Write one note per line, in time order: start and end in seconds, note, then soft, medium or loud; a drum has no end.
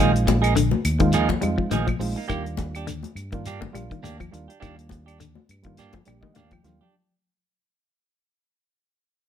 0.00 0.72 A#1 medium
0.00 0.15 D#3 medium
0.00 0.13 F3 medium
0.00 0.57 G#3 medium
0.00 0.13 A#3 medium
0.00 0.57 C4 medium
0.00 0.12 D#4 medium
0.00 0.57 D#4 medium
0.00 0.58 F4 medium
0.00 0.12 G#4 medium
0.13 muted clean electric guitar stroke soft
0.13 closed hi-hat soft
0.26 muted clean electric guitar stroke soft
0.26 kick medium
0.26 closed hi-hat soft
0.26 high conga medium
0.26 shekere soft
0.42 0.54 A#3 medium
0.42 0.54 D#4 medium
0.42 0.54 G#4 medium
0.42 closed hi-hat soft
0.42 claves medium
0.55 0.73 D3 medium
0.55 muted clean electric guitar stroke soft
0.55 closed hi-hat medium
0.55 high conga soft
0.55 shekere medium
0.71 high conga medium
0.85 1.34 D#2 medium
0.85 closed hi-hat soft
0.85 claves medium
0.85 shekere soft
0.99 1.17 D#3 medium
0.99 1.25 G#3 medium
0.99 1.25 C4 medium
0.99 1.26 D#4 medium
0.99 1.26 F4 medium
0.99 muted clean electric guitar stroke soft
0.99 kick medium
0.99 closed hi-hat soft
1.13 1.30 F3 medium
1.13 1.29 A#3 medium
1.13 1.29 D#4 medium
1.13 1.29 G#4 medium
1.13 closed hi-hat medium
1.13 high conga soft
1.13 shekere medium
1.29 1.37 F3 medium
1.29 muted clean electric guitar stroke soft
1.29 kick medium
1.29 closed hi-hat soft
1.29 high conga medium
1.41 1.56 F2 medium
1.41 1.51 G3 medium
1.41 1.76 G#3 medium
1.41 1.76 C4 medium
1.41 1.76 D#4 medium
1.41 1.77 F4 medium
1.41 muted clean electric guitar stroke soft
1.41 closed hi-hat soft
1.41 claves medium
1.41 shekere soft
1.58 1.65 F3 medium
1.58 muted fingered electric bass stroke soft
1.58 kick medium
1.71 1.96 A#1 medium
1.71 1.81 D#3 medium
1.71 1.88 F3 medium
1.71 1.88 A#3 medium
1.71 1.87 D#4 medium
1.71 1.87 G#4 medium
1.71 closed hi-hat medium
1.71 high conga medium
1.71 shekere medium
1.87 2.04 F3 medium
1.87 muted clean electric guitar stroke soft
1.87 kick medium
1.87 closed hi-hat soft
1.87 high conga medium
1.87 claves medium
1.99 2.14 A#1 medium
1.99 2.18 G#3 medium
1.99 2.18 C4 medium
1.99 2.18 D#4 medium
1.99 2.19 F4 medium
1.99 muted clean electric guitar stroke soft
1.99 open hi-hat medium
1.99 shekere soft
2.16 2.27 A#3 soft
2.16 2.28 D#4 soft
2.16 muted clean electric guitar stroke medium
2.28 3.04 D#2 medium
2.28 2.46 D#3 medium
2.28 2.89 G3 medium
2.28 2.45 A#3 medium
2.28 2.88 A#3 medium
2.28 2.89 D4 medium
2.28 2.89 F4 medium
2.28 2.43 G4 medium
2.28 muted clean electric guitar stroke medium
2.28 kick medium
2.28 closed hi-hat medium
2.28 high conga soft
2.28 claves medium
2.28 shekere medium
2.44 muted clean electric guitar stroke soft
2.44 closed hi-hat soft
2.57 muted clean electric guitar stroke soft
2.57 kick medium
2.57 closed hi-hat soft
2.57 high conga medium
2.57 shekere soft
2.75 2.86 D4 soft
2.75 2.87 G4 medium
2.75 closed hi-hat soft
2.75 claves medium
2.87 3.04 D3 medium
2.87 muted clean electric guitar stroke soft
2.87 closed hi-hat medium
2.87 high conga soft
2.87 shekere medium
3.03 closed hi-hat soft
3.03 high conga medium
3.15 3.66 G2 medium
3.15 closed hi-hat soft
3.15 claves medium
3.15 shekere soft
3.32 3.49 D#3 medium
3.32 3.57 G3 medium
3.32 3.57 A#3 medium
3.32 3.58 D4 medium
3.32 3.58 F4 medium
3.32 muted clean electric guitar stroke soft
3.32 kick medium
3.32 closed hi-hat soft
3.46 3.62 A#3 medium
3.46 3.61 D4 medium
3.46 3.60 G4 medium
3.46 closed hi-hat medium
3.46 high conga soft
3.46 shekere medium
3.61 3.69 D3 medium
3.61 muted clean electric guitar stroke soft
3.61 kick medium
3.61 high conga medium
3.72 3.88 A#1 medium
3.72 4.07 G3 medium
3.72 3.84 G3 medium
3.72 4.08 A#3 medium
3.72 4.08 D4 medium
3.72 4.08 F4 medium
3.72 muted clean electric guitar stroke soft
3.72 closed hi-hat medium
3.72 claves medium
3.72 shekere soft
3.91 3.99 D#3 medium
3.91 muted fingered electric bass stroke soft
3.91 kick medium
3.91 closed hi-hat soft
4.03 4.28 D#2 medium
4.03 4.13 D3 medium
4.03 4.19 A#3 medium
4.03 4.18 D4 medium
4.03 4.17 G4 medium
4.03 closed hi-hat medium
4.03 high conga medium
4.03 shekere medium
4.18 4.37 F3 medium
4.18 muted clean electric guitar stroke soft
4.18 kick medium
4.18 closed hi-hat soft
4.18 claves medium
4.31 4.47 D#2 medium
4.31 4.50 G3 medium
4.31 4.50 A#3 medium
4.31 4.51 D4 medium
4.31 4.51 F4 medium
4.31 muted clean electric guitar stroke soft
4.31 closed hi-hat soft
4.31 shekere soft
4.48 4.59 D4 soft
4.48 4.59 G4 medium
4.48 closed hi-hat soft
4.60 5.36 D#2 medium
4.60 4.79 D#3 medium
4.60 5.21 G3 medium
4.60 4.77 A#3 medium
4.60 5.21 A#3 medium
4.60 4.76 D4 medium
4.60 5.21 D4 medium
4.60 5.21 F4 medium
4.60 4.75 G4 medium
4.60 kick medium
4.60 closed hi-hat medium
4.60 high conga soft
4.60 claves medium
4.60 shekere medium
4.79 closed hi-hat soft
4.89 muted clean electric guitar stroke soft
4.89 kick medium
4.89 closed hi-hat soft
4.89 high conga medium
4.89 shekere soft
5.06 5.19 D4 medium
5.06 5.19 G4 medium
5.06 closed hi-hat soft
5.06 claves medium
5.19 5.37 D3 medium
5.19 muted clean electric guitar stroke soft
5.19 closed hi-hat medium
5.19 high conga soft
5.19 shekere medium
5.35 high conga medium
5.49 5.99 G2 medium
5.49 closed hi-hat soft
5.49 claves medium
5.49 shekere soft
5.63 5.83 D#3 medium
5.63 5.88 G3 medium
5.63 5.89 A#3 medium
5.63 5.89 D4 medium
5.63 5.89 F4 medium
5.63 muted clean electric guitar stroke soft
5.63 kick medium
5.63 closed hi-hat soft
5.77 5.94 A#3 medium
5.77 5.94 D4 medium
5.77 5.94 G4 medium
5.77 closed hi-hat medium
5.77 high conga soft
5.77 shekere medium
5.93 6.02 F3 medium
5.93 kick medium
5.93 closed hi-hat soft
5.93 high conga medium
6.05 6.21 A#1 medium
6.05 6.40 G3 medium
6.05 6.17 G3 medium
6.05 6.40 A#3 medium
6.05 6.41 D4 medium
6.05 6.41 G4 medium
6.05 6.22 D5 medium
6.05 muted clean electric guitar stroke soft
6.05 closed hi-hat soft
6.05 claves medium
6.05 shekere soft
6.21 6.30 D#3 medium
6.21 6.34 D#5 medium
6.21 muted fingered electric bass stroke soft
6.21 kick medium
6.21 high conga medium
6.34 6.61 D#2 medium
6.34 6.45 D3 medium
6.34 6.52 A#3 medium
6.34 6.52 D4 medium
6.34 6.51 G4 medium
6.34 6.50 F5 medium
6.34 closed hi-hat medium
6.34 high conga medium
6.34 shekere medium
6.50 6.69 F3 medium
6.50 6.90 G5 medium
6.50 muted clean electric guitar stroke soft
6.50 kick medium
6.50 closed hi-hat soft
6.50 claves medium
6.63 6.78 D#2 medium
6.63 6.82 G3 medium
6.63 6.82 A#3 medium
6.63 6.82 D4 medium
6.63 6.83 F4 medium
6.63 muted clean electric guitar stroke soft
6.63 closed hi-hat soft
6.63 low conga medium
6.63 shekere soft
6.81 6.94 D4 soft
6.81 6.94 G4 medium
6.81 low conga medium